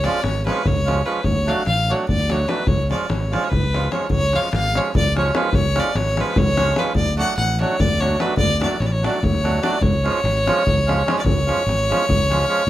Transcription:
0.04 F3 G#3 C#4 F4 D5, davul high
0.23 G#1 C#5, davul high
0.35 davul high
0.46 F3 G#3 C#4 F4 B4, davul high
0.57 davul high
0.66 C#2 C#5, davul low
0.77 davul high
0.85 F3 G#3 C#4 F4, davul high
1.05 F3 G#3 C#4 F4 B4
1.15 davul high
1.24 D2 C#5, davul low
1.46 F#3 A3 D4 F#4 F5, davul high
1.66 A1 F5, davul high
1.77 davul high
1.89 F#3 A3 D4 F#4 C#5
1.99 davul high
2.09 D2 D5, davul low
2.20 davul high
2.29 F#3 A3 D4 F#4 C#5, davul high
2.48 F#3 A3 D4 F#4 B4, davul high
2.59 davul high
2.67 C#2 C#5, davul low
2.79 davul high
2.89 F3 G#3 C#4 F4 D5, davul high
3.01 davul high
3.09 G#1 C#5, davul high
3.22 davul high
3.31 F3 G#3 C#4 F4 D5, davul high
3.43 C#5, davul high
3.50 C#2 B4, davul low
3.64 davul high
3.73 F3 G#3 C#4 F4, davul high
3.83 davul high
3.91 F3 G#3 C#4 F4 C#5, davul high
4.10 C#2 C#5, davul low
4.33 F3 G#3 C#4 F4 F5, davul high
4.53 G#1 F5, davul high
4.64 davul high
4.74 F3 G#3 C#4 F4 C#5, davul high
4.85 davul high
4.95 C#2 D5, davul low
5.07 davul high
5.15 F3 G#3 C#4 F4 C#5, davul high
5.33 F3 G#3 C#4 F4 B4, davul high
5.45 davul high
5.53 C#2 C#5, davul low
5.75 F3 G#3 C#4 F4 D5, davul high
5.95 G#1 C#5, davul high
6.07 davul high
6.17 F3 G#3 C#4 F4 B4, davul high
6.27 davul high
6.36 C#2 C#5, davul low
6.47 davul high
6.57 F3 G#3 C#4 F4, davul high
6.76 F3 G#3 C#4 F4 B4, davul high
6.86 davul high
6.95 D2 D5, davul low
7.16 F#3 A3 D4 F#4 F#5, davul high
7.37 A1 F#5, davul high
7.49 davul high
7.59 F#3 A3 D4 F#4 C#5, davul high
7.71 davul high
7.79 D2 D5, davul low
7.92 davul high
8.00 F#3 A3 D4 F#4 C#5, davul high
8.17 F#3 A3 D4 F#4 B4, davul high
8.30 davul high
8.37 D2 D5, davul low
8.51 davul high
8.60 F#3 A3 D4 F#4 D5, davul high
8.71 davul high
8.80 A1 C#5, davul high
8.86 D5
8.92 C#5
9.02 F#3 A3 D4 F#4 D5, davul high
9.23 D2 C#5, davul low
9.34 davul high
9.43 F#3 A3 D4 F#4, davul high
9.54 davul high
9.61 F#3 A3 D4 F#4 D5, davul high
9.73 davul high
9.81 C#2 C#5, davul low
10.04 F3 G#3 C#4 F4, davul high
10.24 G#1, davul high
10.37 davul high
10.46 F3 G#3 C#4 F4, davul high
10.67 C#2, davul low
10.78 davul high
10.86 F3 G#3 C#4 F4, davul high
11.06 F3 G#3 C#4 F4, davul high
11.19 D5
11.24 C#2 C#5, davul low
11.46 F3 G#3 C#4 F4, davul high
11.66 G#1, davul high
11.89 F3 G#3 C#4 F4, davul high
12.01 davul high
12.09 C#2, davul low
12.22 davul high
12.29 F3 G#3 C#4 F4, davul high
12.47 F3 G#3 C#4 F4
12.58 davul high

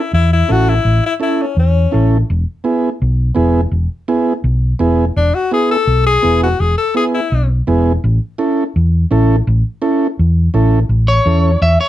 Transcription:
Already playing: E4
0.13 E2 E4
0.33 E4
0.49 A1 C#4 E4 F#4 A4
0.69 E4
0.85 A1
1.06 E4
1.20 C#4 E4 A4
1.42 C#4
1.57 E2 C#4
1.92 A1 C#4 E4 A4
2.30 E1
2.64 B3 E4 G#4
3.02 B1
3.35 E1 B3 E4 G#4
3.71 E1
4.08 B3 E4 G#4
4.44 B1
4.79 E1 B3 E4 G#4
5.16 E1 D4
5.34 F#4
5.51 B3 E4 G#4
5.71 A4
5.87 B1
6.06 G#4
6.22 E1 B3 E4 G#4
6.43 F#4
6.60 E1 G#4
6.78 A4
6.95 B3 E4 G#4
7.14 E4
7.32 B1
7.67 E1 B3 E4 G#4
8.04 A1
8.38 C#4 E4 A4
8.76 E2
9.11 A1 C#4 E4 A4
9.47 A1
9.82 C#4 E4 A4
10.19 E2
10.54 A1 C#4 E4 A4
10.89 A1
11.08 C#5
11.25 E2 C#4 E4 A4
11.62 E2 E5
11.81 C#5

